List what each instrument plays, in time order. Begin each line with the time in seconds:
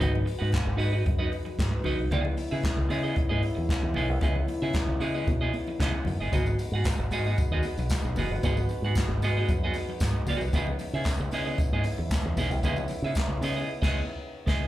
Already playing: french horn section G#3 D#4 F#4 B4
0.00 fingered electric bass G#1, clean electric guitar D#4 F#4 B4 D#5, kick, closed hi-hat, low conga
0.13 muted clean electric guitar stroke, high conga
0.25 muted clean electric guitar stroke, open hi-hat
0.39 fingered electric bass G#2, clean electric guitar D#4 F#4 B4 F#5
0.52 muted clean electric guitar stroke, kick, snare, clap, closed hi-hat, muted conga
0.65 fingered electric bass G#1, muted clean electric guitar stroke
0.77 fingered electric bass G#2, clean electric guitar D#4 F#4 B4 D#5, open hi-hat
0.92 clean electric guitar D#4 F#4 B4 D#5
1.05 fingered electric bass F#2, muted clean electric guitar stroke, kick, closed hi-hat
1.19 clean electric guitar D#4 F#4 B4 D#5
1.31 muted clean electric guitar stroke, open hi-hat, muted conga
1.45 muted clean electric guitar stroke, high conga
1.59 fingered electric bass G#2, kick, snare, clap, closed hi-hat, muted conga
1.72 muted clean electric guitar stroke
1.84 fingered electric bass C#2, clean electric guitar D#4 F#4 B4 D#5, open hi-hat, muted conga, high conga, low conga
1.99 fingered electric bass C2, muted clean electric guitar stroke
2.11 fingered electric bass C#2, french horn section C#3 B3 D#4 E4, clean electric guitar B3 E4 G#4 D#5, kick, closed hi-hat, low conga
2.25 muted clean electric guitar stroke, high conga
2.37 muted clean electric guitar stroke, open hi-hat
2.51 fingered electric bass C#3, clean electric guitar B3 E4 G#4 E5
2.63 muted clean electric guitar stroke, kick, snare, clap, closed hi-hat
2.78 fingered electric bass C#2, muted clean electric guitar stroke
2.89 fingered electric bass C#3, clean electric guitar B3 E4 G#4 D#5, open hi-hat
3.03 clean electric guitar B3 E4 G#4 D#5
3.16 muted clean electric guitar stroke, kick, closed hi-hat, muted conga
3.29 fingered electric bass G#2, clean electric guitar B3 E4 G#4 D#5
3.42 muted clean electric guitar stroke, open hi-hat
3.55 fingered electric bass E2, muted clean electric guitar stroke, high conga
3.69 kick, snare, clap
3.83 fingered electric bass E2, muted clean electric guitar stroke
3.94 fingered electric bass B1, clean electric guitar B3 E4 G#4 D#5, open hi-hat, high conga, low conga
4.09 fingered electric bass C2, muted clean electric guitar stroke
4.21 fingered electric bass C#2, clean electric guitar B3 E4 G#4 D#5, kick, closed hi-hat, muted conga, low conga
4.35 muted clean electric guitar stroke, high conga
4.48 muted clean electric guitar stroke, open hi-hat, muted conga
4.62 fingered electric bass C#3, clean electric guitar B3 E4 G#4 E5
4.73 muted clean electric guitar stroke, kick, snare, clap, closed hi-hat, muted conga
4.88 fingered electric bass C#2, muted clean electric guitar stroke
5.00 fingered electric bass C#3, clean electric guitar B3 E4 G#4 D#5, open hi-hat
5.14 clean electric guitar B3 E4 G#4 D#5
5.27 fingered electric bass B2, muted clean electric guitar stroke, kick, closed hi-hat, low conga
5.41 clean electric guitar B3 E4 G#4 D#5
5.53 muted clean electric guitar stroke, open hi-hat, muted conga
5.67 muted clean electric guitar stroke, high conga
5.80 fingered electric bass C#3, clean electric guitar B3 E4 G#4 D#5, kick, snare, clap, closed hi-hat
5.94 muted clean electric guitar stroke
6.05 fingered electric bass F#2, muted clean electric guitar stroke, open hi-hat, high conga, low conga
6.20 fingered electric bass G1, clean electric guitar B3 E4 G#4 D#5
6.32 fingered electric bass G#1, french horn section G#3 F#4 B4, clean electric guitar B3 F#4 G#4 D#5, kick, closed hi-hat, tambourine, muted conga, low conga
6.46 muted clean electric guitar stroke, tambourine, high conga
6.58 muted clean electric guitar stroke, open hi-hat, tambourine, muted conga
6.72 fingered electric bass G#2, clean electric guitar F#4 G#4 F#5
6.76 clean electric guitar B3
6.84 muted clean electric guitar stroke, kick, snare, clap, closed hi-hat, tambourine
6.99 fingered electric bass G#1, muted clean electric guitar stroke
7.10 fingered electric bass G#2, clean electric guitar B3 F#4 G#4 D#5, open hi-hat, tambourine
7.26 clean electric guitar B3 F#4 G#4 D#5
7.38 muted clean electric guitar stroke, kick, closed hi-hat, tambourine, muted conga
7.51 fingered electric bass D#2, clean electric guitar B3 F#4 G#4 D#5
7.63 muted clean electric guitar stroke, open hi-hat, tambourine, muted conga
7.77 fingered electric bass B1, muted clean electric guitar stroke, tambourine, high conga
7.89 kick, snare, clap, tambourine, muted conga
8.05 fingered electric bass B1, muted clean electric guitar stroke
8.16 fingered electric bass F#1, clean electric guitar B3 F#4 G#4 D#5, open hi-hat, tambourine, muted conga, high conga, low conga
8.30 fingered electric bass G1, muted clean electric guitar stroke
8.43 fingered electric bass G#1, clean electric guitar B3 F#4 G#4 D#5, kick, closed hi-hat, tambourine, muted conga, low conga
8.57 muted clean electric guitar stroke, tambourine, high conga
8.69 muted clean electric guitar stroke, open hi-hat, tambourine
8.82 fingered electric bass G#2, clean electric guitar F#4 G#4 F#5
8.86 clean electric guitar B3
8.95 muted clean electric guitar stroke, kick, snare, clap, closed hi-hat, tambourine
9.08 fingered electric bass G#1, muted clean electric guitar stroke
9.21 fingered electric bass G#2, clean electric guitar B3 F#4 G#4 D#5, open hi-hat, tambourine, muted conga
9.37 clean electric guitar B3 F#4 G#4 D#5
9.48 fingered electric bass F#2, muted clean electric guitar stroke, kick, closed hi-hat, tambourine
9.64 clean electric guitar B3 F#4 G#4 D#5
9.74 muted clean electric guitar stroke, open hi-hat, tambourine, muted conga
9.89 muted clean electric guitar stroke, high conga
10.00 fingered electric bass G#2, kick, snare, clap, closed hi-hat, tambourine
10.15 muted clean electric guitar stroke
10.27 fingered electric bass C#2, clean electric guitar B3 F#4 G#4 D#5, open hi-hat, tambourine, muted conga, high conga, low conga
10.41 fingered electric bass C2, muted clean electric guitar stroke, tambourine
10.53 fingered electric bass C#2, french horn section C#3 B3 E4, clean electric guitar B3 E4 G#4 D#5, kick, closed hi-hat, tambourine, muted conga, low conga
10.67 muted clean electric guitar stroke, high conga
10.79 muted clean electric guitar stroke, open hi-hat, tambourine
10.93 fingered electric bass C#3, clean electric guitar B3 E4 G#4 E5
11.04 muted clean electric guitar stroke, kick, snare, clap, closed hi-hat, tambourine, muted conga
11.20 fingered electric bass C#2, muted clean electric guitar stroke
11.31 fingered electric bass C#3, clean electric guitar B3 E4 G#4 D#5, open hi-hat, tambourine
11.46 clean electric guitar B3 E4 G#4 D#5
11.58 muted clean electric guitar stroke, kick, closed hi-hat, tambourine, muted conga
11.72 fingered electric bass G#2, clean electric guitar B3 E4 G#4 D#5
11.83 muted clean electric guitar stroke, open hi-hat, tambourine, muted conga
11.98 fingered electric bass E2, muted clean electric guitar stroke, high conga
12.11 kick, snare, clap, closed hi-hat, tambourine, muted conga
12.25 fingered electric bass E2, muted clean electric guitar stroke
12.36 fingered electric bass B1, clean electric guitar B3 E4 G#4 D#5, open hi-hat, tambourine, high conga, low conga
12.50 fingered electric bass C2, muted clean electric guitar stroke, tambourine
12.63 fingered electric bass C#2, clean electric guitar B3 E4 G#4 D#5, kick, closed hi-hat, tambourine, low conga
12.76 muted clean electric guitar stroke, tambourine, high conga
12.88 muted clean electric guitar stroke, open hi-hat, tambourine, muted conga
13.02 fingered electric bass C#3, clean electric guitar B3 E4 G#4 E5
13.15 muted clean electric guitar stroke, kick, snare, clap, closed hi-hat, tambourine, muted conga
13.29 fingered electric bass C#2, muted clean electric guitar stroke
13.41 fingered electric bass C#3, clean electric guitar B3 E4 G#4 D#5, open hi-hat, tambourine
13.56 clean electric guitar B3 E4 G#4 D#5
13.82 fingered electric bass C#2, clean electric guitar B3 E4 G#4 D#5, kick, snare, crash
14.46 fingered electric bass C#2, clean electric guitar B3 E4 G#4 D#5, kick, snare, crash